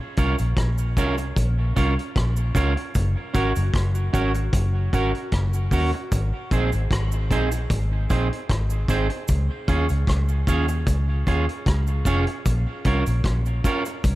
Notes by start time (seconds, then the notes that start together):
0.17 C2 C#4 F4 A#4 C#5, kick, closed hi-hat, cabasa
0.38 A#1, closed hi-hat, cabasa
0.57 A#1, kick, cross-stick, closed hi-hat
0.78 cabasa
0.97 C2 C#4 F4 A#4 C#5, kick, closed hi-hat, cabasa
1.18 muted clean electric guitar stroke, closed hi-hat, cabasa
1.36 A#1, kick, closed hi-hat, cabasa
1.76 C2 C#4 F4 A#4 C#5, kick, closed hi-hat, cabasa
1.99 closed hi-hat
2.16 A#1, kick, cross-stick, closed hi-hat
2.36 cabasa
2.55 C#2 C#4 F4 A#4 C#5, kick, closed hi-hat, cabasa
2.76 muted clean electric guitar stroke, closed hi-hat
2.95 F#1, kick, closed hi-hat, cabasa
3.34 G#1 C#4 F#4 A#4 C#5, kick, closed hi-hat, cabasa
3.56 F#1, closed hi-hat, cabasa
3.74 F#1, kick, cross-stick, closed hi-hat
3.95 cabasa
4.13 G#1 C#4 F#4 A#4 C#5, kick, closed hi-hat, cabasa
4.34 muted clean electric guitar stroke, closed hi-hat, cabasa
4.53 F#1, kick, closed hi-hat, cabasa
4.93 G#1 C#4 F#4 A#4 C#5, kick, closed hi-hat, cabasa
5.15 closed hi-hat
5.32 F#1, kick, cross-stick, closed hi-hat
5.53 cabasa
5.71 D#2 C#4 F#4 A#4 C#5, kick, open hi-hat, cabasa
5.93 muted clean electric guitar stroke, closed hi-hat
6.12 G#1, kick, closed hi-hat, cabasa
6.51 A#1 C4 D#4 G#4 C5, kick, closed hi-hat, cabasa
6.72 G#1, closed hi-hat, cabasa
6.91 G#1, kick, cross-stick, closed hi-hat
7.12 cabasa
7.31 A#1 C4 D#4 G#4 C5, kick, closed hi-hat, cabasa
7.51 muted clean electric guitar stroke, closed hi-hat, cabasa
7.70 G#1, kick, closed hi-hat, cabasa
8.10 A#1 C4 D#4 G#4 C5, kick, closed hi-hat, cabasa
8.33 closed hi-hat
8.49 G#1, kick, cross-stick, closed hi-hat
8.70 cabasa
8.88 G#1 C4 D#4 G#4 C5, kick, closed hi-hat, cabasa
9.10 muted clean electric guitar stroke, closed hi-hat
9.28 C#2, kick, closed hi-hat, cabasa
9.68 D#2 C#4 F4 G#4 C#5, kick, closed hi-hat, cabasa
9.89 C#2, closed hi-hat, cabasa
10.07 C#2, kick, cross-stick, closed hi-hat
10.29 cabasa
10.47 D#2 C#4 F4 G#4 C#5, kick, closed hi-hat, cabasa
10.68 muted clean electric guitar stroke, closed hi-hat, cabasa
10.87 C#2, kick, closed hi-hat, cabasa
11.27 D#2 C#4 F4 G#4 C#5, kick, closed hi-hat, cabasa
11.49 closed hi-hat
11.66 C#2, kick, cross-stick, closed hi-hat
11.87 cabasa
12.05 F1 C#4 F4 G#4 C#5, kick, closed hi-hat, cabasa
12.27 muted clean electric guitar stroke, closed hi-hat
12.46 A#1, kick, closed hi-hat, cabasa
12.85 C2 C#4 F4 A#4 C#5, kick, closed hi-hat, cabasa
13.06 A#1, closed hi-hat, cabasa
13.24 A#1, kick, cross-stick, closed hi-hat
13.46 cabasa
13.64 C#4 F4 A#4 C#5, kick, closed hi-hat, cabasa
13.85 muted clean electric guitar stroke, closed hi-hat, cabasa
14.04 C2, kick, closed hi-hat, cabasa